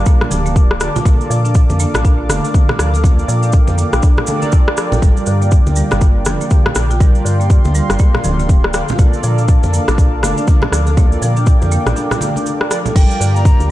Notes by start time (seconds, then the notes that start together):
Already playing: D4 F4 G4 A#4 D5 F5 A5 D6
0.06 A#3, kick, cabasa
0.21 cross-stick, low conga
0.31 D1 F3, high conga, cabasa
0.46 A#3, high conga, cabasa
0.56 kick, cabasa
0.71 cross-stick
0.80 D3 D4 F4 G4 A#4 D5, cross-stick, cabasa
0.96 F4, low conga, cabasa
1.05 A#1 A#3 D4 F4 A4 A#4 D5 F5, kick, low conga, cabasa
1.21 cabasa
1.30 A#2 F3, cabasa
1.45 D4, cabasa
1.54 kick, cabasa
1.70 F2, high conga, cabasa
1.80 A#3, cabasa
1.94 A#1, cross-stick, low conga, cabasa
2.05 D4, kick, cabasa
2.29 F1 A3, cross-stick, high conga, cabasa
2.44 D4, cabasa
2.54 kick, high conga, cabasa
2.69 cross-stick, low conga
2.79 D2 F3 D4 F4 A4 A#4 D5, cross-stick, cabasa
2.94 A4, high conga, cabasa
3.03 A#3 D4 F4 A4 A#4 D5 G5, kick, low conga, cabasa
3.19 cabasa
3.28 A#2 F3, cabasa
3.43 D4, cabasa
3.52 kick, cabasa
3.67 F2, high conga, cabasa
3.78 A#3, cabasa
3.93 A#1, cross-stick, cabasa
4.03 D4, kick, cabasa
4.18 cross-stick, low conga
4.27 A3 D4 F4 A4 A#4 D5, high conga, cabasa
4.42 D4, high conga, cabasa
4.52 kick, cabasa
4.68 cross-stick
4.77 F3, cross-stick, cabasa
4.92 A#1 A4, low conga, cabasa
5.01 G1 G3 D4 F4 G4 A#4 D5 F5, kick, low conga, cabasa
5.17 cabasa
5.26 G2 D3, cabasa
5.42 A#3, cabasa
5.51 kick, cabasa
5.66 D2, high conga, cabasa
5.76 G3, cabasa
5.91 G1, cross-stick, low conga, cabasa
6.01 A#3, kick, cabasa
6.25 F1 F3, cross-stick, high conga, cabasa
6.41 A#3, cabasa
6.50 kick, high conga, cabasa
6.66 cross-stick, low conga
6.75 A#1 D3 D4 F4 G4 A#4 D5, cross-stick, cabasa
6.91 F4, high conga, cabasa
7.00 G3 D4 F4 G4 A#4 D5 C6, kick, low conga, cabasa
7.15 cabasa
7.25 G2 D3, cabasa
7.40 A#3, cabasa
7.50 kick, cabasa
7.65 D2, high conga, cabasa
7.75 G3, cabasa
7.90 G1, cross-stick, cabasa
7.99 A#3, kick, cabasa
8.15 cross-stick, low conga
8.24 D1 F3, high conga, cabasa
8.39 A#3, high conga, cabasa
8.49 kick, cabasa
8.64 cross-stick
8.73 D3 D4 F4 G4 A#4 D5, cross-stick, cabasa
8.88 F4, low conga, cabasa
8.99 A#1 A#3 D4 F4 A4 A#4 D5 A5 D6, kick, low conga, cabasa
9.13 cabasa
9.23 A#2 F3, cabasa
9.38 D4, cabasa
9.48 kick, cabasa
9.63 F2, high conga, cabasa
9.73 A#3, cabasa
9.88 A#1, cross-stick, low conga, cabasa
9.98 D4, kick, cabasa
10.23 F1 A3, cross-stick, high conga, cabasa
10.37 D4, cabasa
10.47 kick, high conga, cabasa
10.62 cross-stick, low conga
10.72 D2 F3 D4 F4 A4 A#4 D5, cross-stick, cabasa
10.87 A4, high conga, cabasa
10.97 A#3 D4 F4 A4 A#4 D5 G5, kick, low conga, cabasa
11.12 cabasa
11.22 A#2 F3, high conga, cabasa
11.37 D4, cabasa
11.46 kick, cabasa
11.62 F2, high conga, cabasa
11.72 A#3, cabasa
11.86 A#1, cross-stick, low conga, cabasa
11.96 D4, cabasa
12.11 cross-stick, low conga, cabasa
12.21 A3, high conga, cabasa
12.36 D4, high conga, cabasa
12.46 cabasa
12.61 cross-stick
12.71 F3 D4 F4 A4 A#4 D5, cross-stick, cabasa
12.86 A4, low conga, cabasa
12.95 G1 G3 D4 F4 G4 A#4 D5 F5 G5 D6, kick, crash, cabasa
13.10 cabasa
13.20 G2 D3, cabasa
13.35 A#3 A#5, cabasa
13.45 kick, cabasa
13.60 D2, cabasa